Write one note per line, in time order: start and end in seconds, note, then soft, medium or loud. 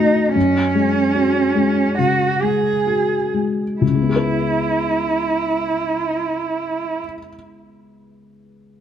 0.00 0.37 D#3 soft
0.00 0.38 A3 soft
0.00 0.34 D#4 medium
0.00 0.37 F#4 soft
0.34 1.95 F#2 soft
0.34 1.95 C#4 medium
0.75 1.40 G#3 soft
1.15 1.81 F#4 soft
1.55 2.24 G#3 soft
1.98 2.69 C#3 soft
1.98 2.43 F#4 medium
2.42 3.15 G#3 soft
2.42 3.34 G#4 soft
2.87 3.62 F#4 soft
3.34 3.81 G#3 soft
3.81 6.98 C#2 soft
3.81 6.98 E4 soft
3.88 7.05 C#3 soft
3.95 7.12 G#3 soft
4.02 7.19 B3 soft
4.09 7.26 G#4 soft
4.16 7.33 B4 soft